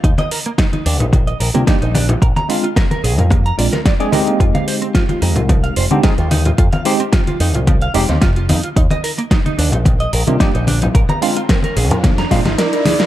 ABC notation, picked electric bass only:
X:1
M:4/4
L:1/16
Q:1/4=110
K:Fdor
V:1 name="Picked electric bass" clef=bass
E,, z4 z E,, B,,,2 z B,,, C, z B,,,2 z | B,,, z4 z B,,, F,,2 z B,,, z4 z | F,, z4 z F,, C,,2 z F,,, D, z E,,2 z | F,, z4 z F,, C,,2 z F,,, E,, F,,,2 F,, z |
E,, z4 z E,, B,,,2 z B,,, C, z B,,,2 z | B,,, z4 z B,,, F,,2 z B,, A,,, z4 |]